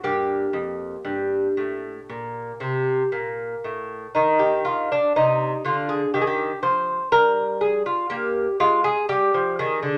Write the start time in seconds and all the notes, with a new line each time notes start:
0.04 G2 A#3 G4
0.53 F2
1.05 G2
1.57 A2
2.09 A#2
2.60 C3
3.12 A#2
3.64 A2
4.15 D#3 D#4
4.39 G4
4.65 F4
4.92 D4
5.16 C3 D#4
5.65 D3 F4
5.89 G#4
6.14 D#3 G4
6.21 G#4
6.27 G4
6.63 F3 C5
7.12 G3 A#4
7.61 G#4
7.86 F4
8.10 A#3 G4
8.60 G#3 F4
8.84 G#4
9.09 G3 G4
9.34 F3
9.59 D#3 G#4
9.83 D3